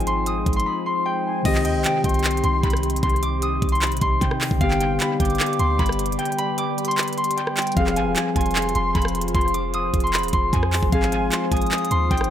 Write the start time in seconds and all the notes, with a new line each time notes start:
Already playing: G#1 F3 G#3 C4 D#4 F4 G#4 C5 G#5
0.00 closed hi-hat
0.07 C6, closed hi-hat
0.26 D#6, closed hi-hat
0.46 G#1, kick, closed hi-hat
0.53 C6, closed hi-hat
0.60 closed hi-hat
0.66 B5
0.86 C6
1.06 G5
1.25 G#5
1.43 C2 C3 D#3 C4 D#4 G4 D#5, kick, closed hi-hat, crash
1.48 G4
1.55 clap
1.65 D#2 G5, closed hi-hat
1.75 C2
1.84 G5, clap, closed hi-hat
2.04 C2 G5 C6, kick, closed hi-hat
2.09 closed hi-hat
2.14 closed hi-hat
2.19 closed hi-hat
2.24 clap, closed hi-hat
2.31 closed hi-hat
2.37 closed hi-hat
2.44 C2 C6, closed hi-hat
2.63 C2 B5, kick, closed hi-hat
2.70 cross-stick, closed hi-hat
2.77 closed hi-hat
2.83 closed hi-hat
2.90 closed hi-hat
2.96 closed hi-hat
3.03 C2 C6, kick, closed hi-hat
3.10 closed hi-hat
3.16 closed hi-hat
3.23 D6, closed hi-hat
3.42 D#6, closed hi-hat
3.62 C2, kick, closed hi-hat
3.69 C6, closed hi-hat
3.75 closed hi-hat
3.82 B5, clap, closed hi-hat
3.87 closed hi-hat
3.92 B1, closed hi-hat
3.97 closed hi-hat
4.01 C2 C6, kick, closed hi-hat
4.21 C3 G5, kick, closed hi-hat
4.31 cross-stick
4.41 clap, open hi-hat
4.51 C2, kick
4.59 G1 D3 G3 B3 G4 B4 D5 F5 G5, kick, closed hi-hat
4.64 G4
4.71 clap
4.80 G5, closed hi-hat
5.00 B5, clap, closed hi-hat
5.20 G1 G5 D6, kick, closed hi-hat
5.25 closed hi-hat
5.30 closed hi-hat
5.35 closed hi-hat
5.40 clap, closed hi-hat
5.46 closed hi-hat
5.53 closed hi-hat
5.59 D2 C6, closed hi-hat
5.79 G1 B5, kick, closed hi-hat
5.86 cross-stick, closed hi-hat
5.92 closed hi-hat
5.99 closed hi-hat
6.06 closed hi-hat
6.12 closed hi-hat
6.19 G5, closed hi-hat
6.25 closed hi-hat
6.32 closed hi-hat
6.38 B5, closed hi-hat
6.58 D6, closed hi-hat
6.78 closed hi-hat
6.85 C6, closed hi-hat
6.91 closed hi-hat
6.97 B5, clap, closed hi-hat
7.03 closed hi-hat
7.08 closed hi-hat
7.13 closed hi-hat
7.17 C6, closed hi-hat
7.24 closed hi-hat
7.31 closed hi-hat
7.37 G5, closed hi-hat
7.47 cross-stick
7.57 G5, clap, closed hi-hat, open hi-hat
7.62 closed hi-hat
7.67 closed hi-hat
7.72 F3, closed hi-hat
7.76 F1 F3 C4 F4 G#4 C5 F5, kick, closed hi-hat
7.87 clap
7.96 G#1 G#5, closed hi-hat
8.06 F1
8.16 G#5, clap, closed hi-hat
8.36 F1 G#5 C6, kick, closed hi-hat
8.41 closed hi-hat
8.46 closed hi-hat
8.51 closed hi-hat
8.56 clap, closed hi-hat
8.62 closed hi-hat
8.69 closed hi-hat
8.75 F1 C6, closed hi-hat
8.95 F1 B5, kick, closed hi-hat
9.02 cross-stick, closed hi-hat
9.08 closed hi-hat
9.15 closed hi-hat
9.21 closed hi-hat
9.28 closed hi-hat
9.35 F1 C6, kick, closed hi-hat
9.41 closed hi-hat
9.48 closed hi-hat
9.54 D6, closed hi-hat
9.74 D#6, closed hi-hat
9.94 F1, kick, closed hi-hat
10.00 C6, closed hi-hat
10.07 closed hi-hat
10.13 B5, clap, closed hi-hat
10.18 closed hi-hat
10.23 D#1, closed hi-hat
10.28 closed hi-hat
10.33 F1 C6, kick, closed hi-hat
10.53 F2 G#5, kick, closed hi-hat
10.63 cross-stick
10.73 clap, open hi-hat
10.83 F1, kick
10.90 G#1 F3 G#3 C4 D#4 F4 F5 G#5, kick, closed hi-hat
10.95 G#4
11.02 clap
11.12 G#5, closed hi-hat
11.32 C6, clap, closed hi-hat
11.52 G#1 G#5 D#6, kick, closed hi-hat
11.57 closed hi-hat
11.62 closed hi-hat
11.66 closed hi-hat
11.71 clap, closed hi-hat
11.78 closed hi-hat
11.85 closed hi-hat
11.91 D#2 C6, closed hi-hat
12.11 G#1 G5, kick, closed hi-hat
12.18 cross-stick, closed hi-hat
12.24 closed hi-hat